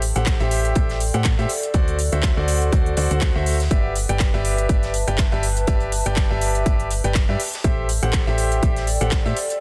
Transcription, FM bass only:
0, 0, Header, 1, 2, 480
1, 0, Start_track
1, 0, Key_signature, 1, "major"
1, 0, Tempo, 491803
1, 1700, Time_signature, 4, 2, 24, 8
1, 9372, End_track
2, 0, Start_track
2, 0, Title_t, "FM bass"
2, 0, Program_c, 0, 39
2, 0, Note_on_c, 0, 33, 93
2, 127, Note_off_c, 0, 33, 0
2, 154, Note_on_c, 0, 33, 97
2, 367, Note_off_c, 0, 33, 0
2, 394, Note_on_c, 0, 33, 99
2, 719, Note_off_c, 0, 33, 0
2, 740, Note_on_c, 0, 33, 93
2, 1087, Note_off_c, 0, 33, 0
2, 1114, Note_on_c, 0, 45, 95
2, 1327, Note_off_c, 0, 45, 0
2, 1354, Note_on_c, 0, 45, 94
2, 1426, Note_off_c, 0, 45, 0
2, 1700, Note_on_c, 0, 38, 92
2, 2047, Note_off_c, 0, 38, 0
2, 2074, Note_on_c, 0, 38, 97
2, 2287, Note_off_c, 0, 38, 0
2, 2314, Note_on_c, 0, 38, 99
2, 2639, Note_off_c, 0, 38, 0
2, 2661, Note_on_c, 0, 38, 93
2, 2879, Note_off_c, 0, 38, 0
2, 2901, Note_on_c, 0, 38, 94
2, 3008, Note_off_c, 0, 38, 0
2, 3035, Note_on_c, 0, 38, 95
2, 3248, Note_off_c, 0, 38, 0
2, 3275, Note_on_c, 0, 38, 94
2, 3600, Note_off_c, 0, 38, 0
2, 3621, Note_on_c, 0, 31, 92
2, 3968, Note_off_c, 0, 31, 0
2, 3994, Note_on_c, 0, 31, 100
2, 4207, Note_off_c, 0, 31, 0
2, 4234, Note_on_c, 0, 31, 98
2, 4559, Note_off_c, 0, 31, 0
2, 4581, Note_on_c, 0, 31, 93
2, 4928, Note_off_c, 0, 31, 0
2, 4954, Note_on_c, 0, 31, 95
2, 5167, Note_off_c, 0, 31, 0
2, 5194, Note_on_c, 0, 31, 93
2, 5519, Note_off_c, 0, 31, 0
2, 5540, Note_on_c, 0, 31, 92
2, 5887, Note_off_c, 0, 31, 0
2, 5914, Note_on_c, 0, 31, 98
2, 6127, Note_off_c, 0, 31, 0
2, 6154, Note_on_c, 0, 31, 96
2, 6479, Note_off_c, 0, 31, 0
2, 6501, Note_on_c, 0, 31, 96
2, 6848, Note_off_c, 0, 31, 0
2, 6873, Note_on_c, 0, 31, 96
2, 7087, Note_off_c, 0, 31, 0
2, 7113, Note_on_c, 0, 43, 92
2, 7186, Note_off_c, 0, 43, 0
2, 7461, Note_on_c, 0, 33, 94
2, 7808, Note_off_c, 0, 33, 0
2, 7834, Note_on_c, 0, 33, 99
2, 8047, Note_off_c, 0, 33, 0
2, 8074, Note_on_c, 0, 33, 97
2, 8399, Note_off_c, 0, 33, 0
2, 8421, Note_on_c, 0, 33, 96
2, 8767, Note_off_c, 0, 33, 0
2, 8795, Note_on_c, 0, 33, 95
2, 9008, Note_off_c, 0, 33, 0
2, 9034, Note_on_c, 0, 45, 92
2, 9106, Note_off_c, 0, 45, 0
2, 9372, End_track
0, 0, End_of_file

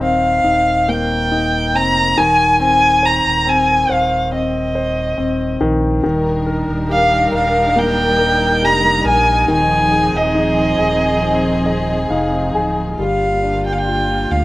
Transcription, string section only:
0, 0, Header, 1, 2, 480
1, 0, Start_track
1, 0, Key_signature, -3, "major"
1, 0, Tempo, 862069
1, 1452, Time_signature, 4, 2, 24, 8
1, 5763, Tempo, 879765
1, 7998, End_track
2, 0, Start_track
2, 0, Title_t, "String section"
2, 0, Program_c, 0, 48
2, 3355, Note_on_c, 0, 63, 72
2, 3357, Note_on_c, 0, 55, 75
2, 3357, Note_on_c, 0, 62, 67
2, 3357, Note_on_c, 0, 70, 83
2, 5258, Note_off_c, 0, 55, 0
2, 5258, Note_off_c, 0, 62, 0
2, 5258, Note_off_c, 0, 70, 0
2, 5274, Note_on_c, 0, 60, 69
2, 5276, Note_on_c, 0, 53, 68
2, 5276, Note_on_c, 0, 68, 83
2, 7173, Note_off_c, 0, 63, 0
2, 7176, Note_off_c, 0, 60, 0
2, 7178, Note_off_c, 0, 53, 0
2, 7178, Note_off_c, 0, 68, 0
2, 7197, Note_on_c, 0, 65, 66
2, 7199, Note_on_c, 0, 50, 61
2, 7199, Note_on_c, 0, 55, 58
2, 7199, Note_on_c, 0, 58, 56
2, 7998, Note_off_c, 0, 50, 0
2, 7998, Note_off_c, 0, 55, 0
2, 7998, Note_off_c, 0, 58, 0
2, 7998, Note_off_c, 0, 65, 0
2, 7998, End_track
0, 0, End_of_file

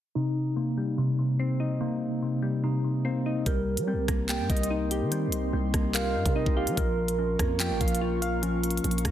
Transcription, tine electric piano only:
0, 0, Header, 1, 2, 480
1, 0, Start_track
1, 0, Tempo, 413793
1, 176, Time_signature, 4, 2, 24, 8
1, 10569, End_track
2, 0, Start_track
2, 0, Title_t, "Tine electric piano"
2, 0, Program_c, 0, 4
2, 177, Note_on_c, 0, 63, 110
2, 653, Note_on_c, 0, 58, 85
2, 1134, Note_on_c, 0, 48, 86
2, 2086, Note_off_c, 0, 58, 0
2, 2100, Note_on_c, 0, 58, 91
2, 3044, Note_off_c, 0, 63, 0
2, 3058, Note_on_c, 0, 63, 101
2, 3525, Note_off_c, 0, 58, 0
2, 3539, Note_on_c, 0, 58, 89
2, 4015, Note_off_c, 0, 48, 0
2, 4017, Note_off_c, 0, 63, 0
2, 4018, Note_off_c, 0, 58, 0
2, 4020, Note_on_c, 0, 70, 108
2, 4494, Note_on_c, 0, 60, 95
2, 4975, Note_on_c, 0, 58, 86
2, 5916, Note_off_c, 0, 60, 0
2, 5929, Note_on_c, 0, 60, 94
2, 6878, Note_off_c, 0, 70, 0
2, 6892, Note_on_c, 0, 70, 104
2, 7358, Note_off_c, 0, 60, 0
2, 7372, Note_on_c, 0, 60, 78
2, 7844, Note_off_c, 0, 70, 0
2, 7854, Note_off_c, 0, 60, 0
2, 7856, Note_off_c, 0, 58, 0
2, 7857, Note_on_c, 0, 70, 108
2, 8336, Note_on_c, 0, 61, 81
2, 8818, Note_on_c, 0, 58, 92
2, 9759, Note_off_c, 0, 61, 0
2, 9772, Note_on_c, 0, 61, 99
2, 10569, Note_off_c, 0, 58, 0
2, 10569, Note_off_c, 0, 61, 0
2, 10569, Note_off_c, 0, 70, 0
2, 10569, End_track
0, 0, End_of_file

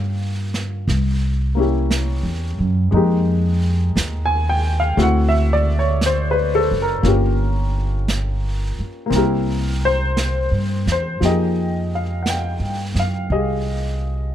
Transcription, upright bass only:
0, 0, Header, 1, 3, 480
1, 0, Start_track
1, 0, Key_signature, -4, "minor"
1, 0, Tempo, 1025641
1, 1370, Time_signature, 4, 2, 24, 8
1, 2812, Tempo, 1041667
1, 6655, End_track
2, 0, Start_track
2, 0, Title_t, "Upright bass"
2, 0, Program_c, 0, 32
2, 0, Note_on_c, 0, 43, 75
2, 388, Note_off_c, 0, 43, 0
2, 409, Note_on_c, 0, 36, 79
2, 1030, Note_off_c, 0, 36, 0
2, 1045, Note_on_c, 0, 40, 59
2, 1196, Note_off_c, 0, 40, 0
2, 1210, Note_on_c, 0, 42, 60
2, 1359, Note_off_c, 0, 42, 0
2, 1367, Note_on_c, 0, 41, 79
2, 1830, Note_off_c, 0, 41, 0
2, 1851, Note_on_c, 0, 39, 73
2, 2310, Note_off_c, 0, 39, 0
2, 2327, Note_on_c, 0, 38, 81
2, 3117, Note_off_c, 0, 38, 0
2, 3137, Note_on_c, 0, 30, 60
2, 3278, Note_off_c, 0, 30, 0
2, 3284, Note_on_c, 0, 31, 84
2, 4070, Note_off_c, 0, 31, 0
2, 4238, Note_on_c, 0, 36, 84
2, 4868, Note_off_c, 0, 36, 0
2, 4887, Note_on_c, 0, 43, 62
2, 5037, Note_off_c, 0, 43, 0
2, 5049, Note_on_c, 0, 40, 65
2, 5198, Note_off_c, 0, 40, 0
2, 5209, Note_on_c, 0, 41, 62
2, 5831, Note_off_c, 0, 41, 0
2, 5847, Note_on_c, 0, 43, 45
2, 5997, Note_off_c, 0, 43, 0
2, 6009, Note_on_c, 0, 42, 54
2, 6158, Note_off_c, 0, 42, 0
2, 6172, Note_on_c, 0, 36, 69
2, 6655, Note_off_c, 0, 36, 0
2, 6655, End_track
3, 0, Start_track
3, 0, Title_t, "Muted upright bass strokes"
3, 4092, Note_on_c, 9, 29, 37
3, 4138, Note_off_c, 9, 29, 0
3, 6655, End_track
0, 0, End_of_file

